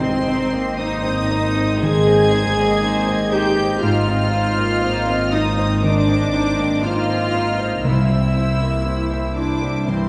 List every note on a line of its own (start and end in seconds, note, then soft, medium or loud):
0.00 3.79 G#1 loud
0.00 1.26 G#2 loud
0.00 1.76 G#2 medium
0.00 3.68 G#2 medium
0.00 0.11 C4 medium
0.00 0.74 C4 loud
0.00 0.75 C4 loud
0.00 0.28 C4 medium
0.00 0.44 C5 medium
0.00 0.43 C5 medium
0.00 0.28 D#5 medium
0.00 0.74 C6 loud
0.12 2.14 C4 medium
0.26 0.68 C4 medium
0.26 0.53 D#4 medium
0.26 0.52 C5 medium
0.45 1.46 C5 medium
0.52 0.78 A#3 medium
0.52 0.78 C4 medium
0.52 0.78 D#5 medium
0.78 1.20 C4 medium
0.78 1.81 D#4 loud
0.78 1.79 D#4 loud
0.78 1.02 D#4 medium
0.78 1.02 C5 medium
0.78 1.82 D#6 loud
1.02 1.29 C4 medium
1.02 1.46 C5 medium
1.02 1.29 D#5 medium
1.30 1.56 D#4 medium
1.30 1.72 D#4 medium
1.30 1.56 C5 medium
1.47 2.48 C5 medium
1.55 1.81 C4 medium
1.55 1.97 C5 medium
1.55 1.81 D#5 medium
1.81 5.72 D#3 medium
1.81 2.23 D#3 medium
1.81 2.05 D#4 medium
1.81 3.32 G#4 loud
1.81 3.33 G#4 loud
1.81 2.05 C5 medium
1.81 3.32 G#6 loud
2.07 2.32 C4 medium
2.07 2.47 C5 medium
2.07 2.32 D#5 medium
2.15 4.14 C4 medium
2.32 2.73 C4 medium
2.32 2.57 D#4 medium
2.32 2.57 C5 medium
2.49 3.47 C5 medium
2.58 2.83 A#3 medium
2.58 2.83 C4 medium
2.58 2.83 D#5 medium
2.81 3.23 C4 medium
2.81 3.05 D#4 medium
2.81 3.05 C5 medium
3.08 3.33 C4 medium
3.08 3.48 C5 medium
3.08 3.33 D#5 medium
3.31 3.57 D#4 medium
3.31 3.73 D#4 medium
3.31 3.81 G4 loud
3.31 3.83 G4 loud
3.31 3.57 C5 medium
3.31 3.82 G6 loud
3.49 4.48 C5 medium
3.56 3.82 C4 medium
3.56 3.98 C5 medium
3.56 3.82 D#5 medium
3.81 7.81 G#1 loud
3.81 7.72 G#2 medium
3.81 5.80 G#2 medium
3.81 4.05 D#4 medium
3.81 5.30 F4 loud
3.81 4.05 C5 medium
3.81 5.30 F6 loud
4.07 4.33 C4 medium
4.07 4.48 D#4 medium
4.07 4.32 D#5 medium
4.16 6.15 C4 medium
4.31 4.73 C4 medium
4.31 4.57 D#4 medium
4.31 4.57 C5 medium
4.49 5.48 C5 medium
4.58 4.83 A#3 medium
4.58 4.83 C4 medium
4.58 4.83 D#5 medium
4.82 5.24 C4 medium
4.82 5.06 D#4 medium
4.82 5.06 C5 medium
5.07 5.33 C4 medium
5.07 5.48 C5 medium
5.07 5.33 D#5 medium
5.32 5.83 D#4 loud
5.32 5.73 D#4 medium
5.32 5.58 D#4 medium
5.32 5.83 D#4 loud
5.32 5.59 C5 medium
5.32 5.83 D#6 loud
5.49 6.48 C5 medium
5.58 5.84 C4 medium
5.58 5.98 C5 medium
5.58 5.84 D#5 medium
5.83 6.23 D#3 medium
5.83 7.89 D#3 medium
5.83 6.84 D4 loud
5.83 6.07 D#4 medium
5.83 6.07 C5 medium
5.83 6.84 D6 loud
6.07 6.34 C4 medium
6.07 6.48 C5 medium
6.07 6.34 D#5 medium
6.16 8.15 C4 medium
6.33 6.73 C4 medium
6.33 6.58 D#4 medium
6.33 6.58 C5 medium
6.50 7.47 C5 medium
6.59 6.84 A#3 medium
6.59 6.84 C4 medium
6.59 6.84 D#5 medium
6.83 7.24 C4 medium
6.83 7.88 D#4 medium
6.83 7.07 D#4 medium
6.83 7.85 F4 loud
6.83 7.08 C5 medium
6.83 7.85 F6 loud
7.08 7.35 C4 medium
7.08 7.49 C5 medium
7.08 7.34 D#5 medium
7.16 7.88 D#5 medium
7.34 7.75 D#4 medium
7.34 7.60 D#4 medium
7.34 7.60 C5 medium
7.49 8.49 C5 medium
7.60 7.85 C4 medium
7.60 7.85 C5 medium
7.60 7.86 D#5 medium
7.83 10.09 C2 medium
7.83 9.83 C2 medium
7.83 10.09 C3 medium
7.83 9.33 E4 medium
7.83 9.37 E4 medium
7.83 9.36 E6 loud
7.88 8.10 E4 medium
7.88 8.10 C5 medium
8.09 8.37 C4 medium
8.09 8.50 C5 medium
8.09 8.36 E5 medium
8.16 10.09 C4 medium
8.34 8.75 C4 medium
8.34 8.62 E4 medium
8.34 8.62 C5 medium
8.51 9.51 C5 medium
8.59 8.85 A#3 soft
8.59 8.87 C4 medium
8.64 8.88 E5 medium
8.85 9.26 C4 medium
8.85 10.09 E4 medium
8.89 9.12 E4 medium
8.89 9.11 C5 medium
9.12 9.38 C4 medium
9.12 9.52 C5 medium
9.12 9.37 E5 medium
9.19 10.09 E5 medium
9.36 9.87 D4 medium
9.36 9.86 D4 medium
9.36 9.77 E4 medium
9.36 9.63 E4 medium
9.36 9.63 C5 medium
9.36 9.86 D6 loud
9.53 10.09 C5 medium
9.62 9.88 C4 medium
9.62 10.03 C5 medium
9.62 9.88 E5 medium
9.86 10.09 G2 medium
9.86 10.09 E3 medium
9.86 10.09 C4 medium
9.86 10.09 E4 medium
9.86 10.09 C5 medium
9.86 10.09 C6 loud